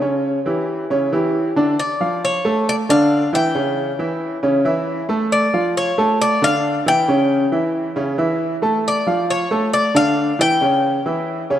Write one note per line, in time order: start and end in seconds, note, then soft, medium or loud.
0.01 0.38 C#3 medium
0.01 0.38 C#4 medium
0.01 0.38 C#5 medium
0.46 0.82 E3 medium
0.46 0.82 E4 medium
0.46 0.82 G4 medium
0.90 1.08 C#3 medium
0.90 1.08 C#4 medium
0.90 1.09 C#5 medium
1.12 1.48 E3 medium
1.12 1.49 E4 medium
1.12 1.49 G4 medium
1.56 1.74 D3 medium
1.56 1.74 D4 medium
1.56 1.75 D5 medium
1.79 2.24 D5 medium
2.00 2.37 F3 medium
2.00 2.37 F4 medium
2.00 2.37 F5 medium
2.25 2.69 C#5 medium
2.45 2.81 A3 medium
2.45 2.81 A4 medium
2.45 2.81 A5 medium
2.69 2.75 D5 loud
2.89 3.25 D3 loud
2.89 3.25 D4 medium
2.89 3.26 D5 medium
2.89 3.31 F5 loud
3.33 3.51 E3 medium
3.33 3.51 E4 medium
3.33 3.51 E5 medium
3.33 4.62 G5 loud
3.55 3.91 C#3 medium
3.55 3.91 C#4 medium
3.55 3.91 C#5 medium
3.99 4.35 E3 medium
3.99 4.35 E4 medium
3.99 4.36 E5 medium
4.43 4.61 C#3 medium
4.43 4.61 C#4 medium
4.43 4.61 C#5 medium
4.65 5.01 E3 medium
4.65 5.01 E4 medium
4.65 5.02 E5 medium
5.09 5.45 A3 medium
5.09 5.45 A4 medium
5.09 5.46 A5 medium
5.32 5.77 D5 medium
5.53 5.90 F3 medium
5.53 5.90 F4 medium
5.53 5.90 F5 medium
5.77 6.18 C#5 medium
5.98 6.34 A3 medium
5.98 6.34 A4 medium
5.98 6.34 A5 medium
6.21 6.41 D5 loud
6.42 6.78 D3 loud
6.42 6.78 D4 medium
6.42 6.78 D5 medium
6.42 6.84 F5 loud
6.86 7.04 E3 medium
6.86 7.04 E4 medium
6.86 7.04 E5 medium
6.86 8.15 G5 loud
7.08 7.44 C#3 medium
7.08 7.44 C#4 medium
7.08 7.45 C#5 medium
7.52 7.88 E3 medium
7.52 7.88 E4 medium
7.52 7.89 E5 medium
7.96 8.14 C#3 medium
7.96 8.14 C#4 medium
7.96 8.15 C#5 medium
8.18 8.54 E3 medium
8.18 8.55 E4 medium
8.18 8.55 E5 medium
8.62 8.98 A3 medium
8.62 8.99 A4 medium
8.62 8.99 A5 medium
8.88 9.30 D5 medium
9.07 9.43 F3 medium
9.07 9.43 F4 medium
9.07 9.43 F5 medium
9.30 9.73 C#5 medium
9.51 9.87 A3 medium
9.51 9.87 A4 medium
9.51 9.87 A5 medium
9.73 9.96 D5 medium
9.94 10.31 D3 medium
9.94 10.31 D4 loud
9.94 10.31 D5 medium
9.94 10.41 F5 loud
10.39 10.57 E3 medium
10.39 10.57 E4 medium
10.39 10.57 E5 medium
10.39 11.59 G5 loud
10.61 10.97 C#3 medium
10.61 10.98 C#4 medium
10.61 10.98 C#5 medium
11.06 11.42 E3 medium
11.06 11.42 E4 medium
11.06 11.42 E5 medium
11.50 11.59 C#3 medium
11.50 11.59 C#4 medium
11.50 11.59 C#5 medium